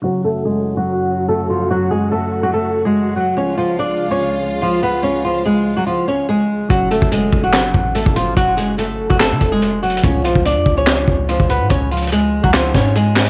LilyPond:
<<
  \new Staff \with { instrumentName = "Nylon-string guitar" } { \time 4/4 \key fis \minor \tempo 4 = 144 <fis fis'>8 <a a'>8 <gis gis'>8. <fis fis'>4~ <fis fis'>16 <a a'>8 <eis eis'>8 | <fis fis'>8 <gis gis'>8 <a a'>8. <fis fis'>16 <a a'>8. <gis gis'>8. <fis fis'>8 | <cis' cis''>8 <eis eis'>8 <d' d''>8. <cis' cis''>4~ <cis' cis''>16 <eis eis'>8 <b b'>8 | <cis' cis''>8 <eis eis'>8 <gis gis'>8. <fis fis'>16 <eis eis'>8 <cis' cis''>8 <gis gis'>4 |
<fis fis'>8 <a a'>8 <gis gis'>8. <fis fis'>4~ <fis fis'>16 <a a'>8 <eis eis'>8 | <fis fis'>8 <gis gis'>8 <a a'>8. <fis fis'>16 <a a'>8. <gis gis'>8. <fis fis'>8 | <cis' cis''>8 <eis eis'>8 <d' d''>8. <cis' cis''>4~ <cis' cis''>16 <eis eis'>8 <b b'>8 | <cis' cis''>8 <eis eis'>8 <gis gis'>8. <fis fis'>16 <eis eis'>8 <cis' cis''>8 <gis gis'>4 | }
  \new Staff \with { instrumentName = "Synth keys" } { \clef bass \time 4/4 \key fis \minor <cis fis cis' fis'>1~ | <cis fis cis' fis'>1 | <eis gis eis'>1~ | <eis gis eis'>1 |
<cis fis cis' fis'>1~ | <cis fis cis' fis'>1 | <eis gis eis'>1~ | <eis gis eis'>1 | }
  \new Staff \with { instrumentName = "String section" } { \clef bass \time 4/4 \key fis \minor <fis, fis fis'>1~ | <fis, fis fis'>1 | <cis, gis eis'>1~ | <cis, gis eis'>1 |
r1 | r1 | r1 | r1 | }
  \new Staff \with { instrumentName = "808-style bass" } { \clef bass \time 4/4 \key fis \minor r1 | r1 | r1 | r1 |
fis,,8. fis,,8. fis,,8 gis,,16 fis,,16 a,,8. fis,,8 a,,16 | fis,,4~ fis,,16 gis,,16 fis,,16 fis,,8 cis16 eis,,4. | cis,8 b,,16 cis,8 eis,16 cis,4 cis,8. cis,8 gis,16 | cis,4.~ cis,16 cis,8. gis,4. | }
  \new DrumStaff \with { instrumentName = "Drums" } \drummode { \time 4/4 r4 r4 r4 r4 | r4 r4 r4 r4 | r4 r4 r4 r4 | r4 r4 r4 r4 |
<hh bd>8 hh16 bd16 hh8 bd8 <hc hh sn>8 bd8 hh16 bd16 hh8 | <hh bd>8 hh8 hh8. bd16 <hc hh sn>8 <hh bd>8 \tuplet 3/2 { hh16 r16 r16 hh16 hh16 hh16 } | <hh bd>8 hh16 bd16 hh8 bd8 <hc hh sn>8 bd8 hh16 bd16 hh8 | <hh bd>8 hh32 hh32 hh32 hh32 hh8. bd16 <hc hh sn>8 <hh bd sn>8 hh8 <hc hh hho sn>8 | }
>>